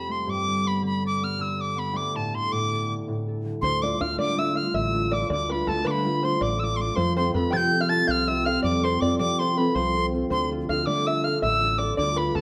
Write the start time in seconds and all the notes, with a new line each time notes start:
Already playing: F2 C3 C5 B5
0.09 A3 C6
0.26 G2 D6
0.47 D3
0.65 B3 B5
0.82 D3
0.86 B5
1.04 D5 D6
1.22 B3 F6
1.39 D3 E6
1.57 D5 D6
1.76 B3 B5
1.93 D2 D6
2.15 A2 A5
2.34 D3 C6
2.52 A2 D6
2.72 A4
2.89 D3
3.08 A2
3.28 A4
3.45 D3
3.62 D2 D3 C5 C6
3.82 A3 D4 F4 D5 D6
3.99 D2 A3 D4 F4 F5 F6
4.18 D3 A3 D5 D6
4.37 A3 D4 F4 E5 E6
4.55 A3 D4 F4 F5 F6
4.69 F6
4.74 A1 D3 E5 E6
4.93 A3 D4 F4
5.11 A3 D4 F4 D5 D6
5.30 D2 D3 D5 D6
5.49 A3 D4 F4 B4 B5
5.67 D2 A3 D4 F4 A4 A5
5.84 D3 A3 B4 D6
5.91 B5
6.05 A3 D4 F4 B4
6.23 A3 D4 F4 C5 C6
6.41 A1 D3 D5 D6
6.59 A3 D4 F4 E6
6.64 D6
6.76 A3 C6
6.81 D4 F4 D6
6.96 F2 F3 C5 C6
7.17 C4 F4 A4 C5 C6
7.34 F2 C4 F4 A4 B4 B5
7.50 C3 F3 G5 A6
7.57 G6
7.73 C4 F4 A4
7.80 F5 F6
7.89 C4 F4 A4 A5 A6
8.07 C2 F3 F5 F6 G6
8.28 C4 F4 A4 E5 E6
8.45 C4 F4 A4 F5 F6
8.62 F2 F3 D5 D6
8.83 C4 F4 A4 C5 C6
9.01 F2 C4 F4 A4 D5 D6
9.19 C3 F3 D5 D6
9.39 C4 F4 A4 C5 C6
9.57 C4 F4 A4 B4 B5
9.75 C2 F3 C5 C6
9.95 C4 F4 A4
10.13 C4 F4 A4
10.30 D2 D3 C5 C6
10.51 D4 F4 A4
10.69 D2 D4 F4 A4 F5 F6
10.86 D3 A3 D5 D6
11.07 D4 F4 A4 E5 E6
11.24 D4 F4 A4 F5 F6
11.42 A1 D3 E5 E6
11.63 D4 F4 A4
11.78 D4 F4 A4 D5 D6
11.97 D2 D3 D5 D6
12.16 D4 F4 A4 B4 B5
12.35 D2 D4 F4 A4 A5